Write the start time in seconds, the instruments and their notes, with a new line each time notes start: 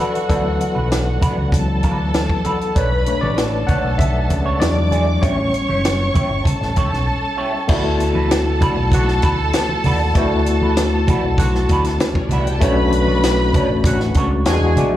Already playing: tine electric piano E3 F#3 B3 A4 B4 D5 E5 F#5, violin section F#4 F#5
0.00 clean electric guitar D4 F#4 B4
0.14 muted clean electric guitar stroke, closed hi-hat
0.29 fingered electric bass D2, tine electric piano E3 F#3 B3 A4, clean electric guitar D4 F#4 B4, kick, closed hi-hat
0.45 muted clean electric guitar stroke
0.60 muted clean electric guitar stroke, closed hi-hat, muted conga
0.75 fingered electric bass B1, clean electric guitar D4 F#4 B4, high conga
0.92 snare, closed hi-hat
1.06 muted clean electric guitar stroke
1.21 clean electric guitar D4 F#4 B4, muted fingered electric bass stroke, kick, closed hi-hat, muted conga, high conga, low conga
1.37 fingered electric bass C#2, muted clean electric guitar stroke
1.52 tine electric piano E3 F#3 B3, violin section A4 A5, kick, closed hi-hat, low conga
1.68 muted clean electric guitar stroke
1.83 fingered electric bass D2, clean electric guitar D4 F#4 B4, kick, closed hi-hat, muted conga, high conga
1.99 muted clean electric guitar stroke
2.13 muted clean electric guitar stroke, snare, closed hi-hat, muted conga
2.30 kick, high conga
2.44 clean electric guitar D4 F#4 B4, tine electric piano A4, closed hi-hat, high conga
2.60 muted clean electric guitar stroke, closed hi-hat
2.75 fingered electric bass B1, clean electric guitar D4 A4 C#5, tine electric piano B4, violin section B4 B5, kick, closed hi-hat, muted conga
2.92 muted clean electric guitar stroke
3.06 tine electric piano A3 D4 C#5, muted clean electric guitar stroke, closed hi-hat, muted conga
3.21 fingered electric bass A1, clean electric guitar D4 A4 C#5, tine electric piano D5, high conga
3.38 violin section A4 A5, snare, closed hi-hat, muted conga
3.53 muted clean electric guitar stroke
3.67 clean electric guitar D4 A4 C#5, tine electric piano F#5, muted fingered electric bass stroke, kick, closed hi-hat, high conga, low conga
3.83 fingered electric bass B1, muted clean electric guitar stroke
3.98 tine electric piano E5, muted clean electric guitar stroke, kick, closed hi-hat, muted conga, low conga
4.15 muted clean electric guitar stroke
4.30 fingered electric bass C#2, kick, closed hi-hat, muted conga, high conga
4.46 clean electric guitar D4 A4 C#5
4.60 fingered electric bass E2, tine electric piano F#3 G#3 D4 D5, violin section D5 D6, muted clean electric guitar stroke, snare, closed hi-hat, muted conga
4.76 muted clean electric guitar stroke, high conga
4.91 clean electric guitar E4 G#4 D5, closed hi-hat, muted conga, high conga
5.07 muted clean electric guitar stroke
5.22 fingered electric bass A1, tine electric piano G3 B3 C#4 C#5, clean electric guitar E4 G4 C#5, violin section C#5 C#6, kick, closed hi-hat, muted conga
5.37 muted clean electric guitar stroke
5.53 muted clean electric guitar stroke, closed hi-hat, muted conga
5.69 fingered electric bass F#1, clean electric guitar E4 G4 C#5, high conga
5.85 snare, closed hi-hat
5.99 muted clean electric guitar stroke
6.14 clean electric guitar E4 G4 C#5, muted fingered electric bass stroke, kick, closed hi-hat, high conga, low conga
6.30 fingered electric bass G1, muted clean electric guitar stroke
6.45 violin section A4 A5, kick, closed hi-hat, muted conga, high conga, low conga
6.61 fingered electric bass A1, muted clean electric guitar stroke, snare
6.76 fingered electric bass C#2, clean electric guitar E4 G4 C#5, kick, closed hi-hat, muted conga, high conga
6.92 fingered electric bass B1, muted clean electric guitar stroke, snare
7.07 muted clean electric guitar stroke
7.23 muted clean electric guitar stroke
7.37 clean electric guitar E4 G4 C#5
7.53 muted clean electric guitar stroke
7.68 fingered electric bass D2, tine electric piano A3 B3 E4 F#4, clean electric guitar D4 F#4 B4, violin section A4 A5, kick, crash, muted conga
7.85 muted clean electric guitar stroke
8.00 muted clean electric guitar stroke, closed hi-hat
8.15 clean electric guitar D4 F#4 B4, high conga
8.31 snare, closed hi-hat, muted conga
8.46 muted clean electric guitar stroke
8.61 clean electric guitar D4 F#4 B4, muted fingered electric bass stroke, kick, closed hi-hat, muted conga, high conga, low conga
8.77 fingered electric bass B1, muted clean electric guitar stroke
8.92 horn section D3 B3 F#4, kick, closed hi-hat, high conga, low conga
9.08 muted clean electric guitar stroke, snare
9.22 fingered electric bass D2, clean electric guitar D4 F#4 B4, kick, closed hi-hat, high conga
9.39 muted clean electric guitar stroke
9.53 muted clean electric guitar stroke, snare, closed hi-hat, muted conga
9.69 muted clean electric guitar stroke, high conga
9.84 fingered electric bass D#2, clean electric guitar D4 F#4 B4, open hi-hat, muted conga, high conga, low conga
10.00 muted clean electric guitar stroke
10.14 fingered electric bass D2, tine electric piano A3 B3 E4 F#4, clean electric guitar D4 F#4 B4, kick, closed hi-hat, muted conga
10.32 muted clean electric guitar stroke
10.46 muted clean electric guitar stroke, closed hi-hat, muted conga
10.62 clean electric guitar D4 F#4 B4, high conga
10.77 snare, closed hi-hat
10.93 muted clean electric guitar stroke
11.08 clean electric guitar D4 F#4 B4, muted fingered electric bass stroke, kick, closed hi-hat, muted conga, high conga, low conga
11.24 fingered electric bass B1, muted clean electric guitar stroke
11.38 horn section D3 B3 F#4, kick, closed hi-hat, muted conga, high conga, low conga
11.55 muted clean electric guitar stroke, snare
11.69 fingered electric bass D2, clean electric guitar D4 F#4 B4, kick, closed hi-hat, high conga
11.84 muted clean electric guitar stroke, snare, closed hi-hat
11.98 muted clean electric guitar stroke, snare, closed hi-hat, muted conga
12.14 violin section C#4 C#5, muted clean electric guitar stroke, kick, high conga
12.23 violin section D4 D5
12.29 fingered electric bass C2, clean electric guitar D4 F#4 B4, violin section E4 E5, closed hi-hat, muted conga, high conga, low conga
12.38 violin section F#4 F#5
12.46 violin section G4 G5, muted clean electric guitar stroke, closed hi-hat
12.53 violin section A4 A5
12.60 fingered electric bass B1, tine electric piano A3 C#4 D4 F#4, clean electric guitar D4 A4 C#5, violin section B4 B5, kick, closed hi-hat, muted conga
12.77 muted clean electric guitar stroke
12.92 muted clean electric guitar stroke, closed hi-hat, muted conga
13.07 clean electric guitar D4 A4 C#5, high conga
13.23 snare, closed hi-hat, muted conga
13.39 muted clean electric guitar stroke
13.53 clean electric guitar D4 A4 C#5, muted fingered electric bass stroke, kick, closed hi-hat, high conga, low conga
13.70 fingered electric bass A1, muted clean electric guitar stroke
13.84 horn section D3 C#4 F#4, kick, closed hi-hat, muted conga, high conga, low conga
14.00 muted clean electric guitar stroke, snare
14.14 fingered electric bass C#2, clean electric guitar D4 A4 C#5, kick, closed hi-hat, high conga
14.31 muted clean electric guitar stroke
14.45 fingered electric bass E2, tine electric piano G3 B3 D4 F#4, violin section G#4 G#5, muted clean electric guitar stroke, snare, closed hi-hat
14.52 tine electric piano G#3
14.61 muted clean electric guitar stroke, high conga
14.77 fingered electric bass A#1, clean electric guitar E4 G#4 D5, closed hi-hat, muted conga, high conga, low conga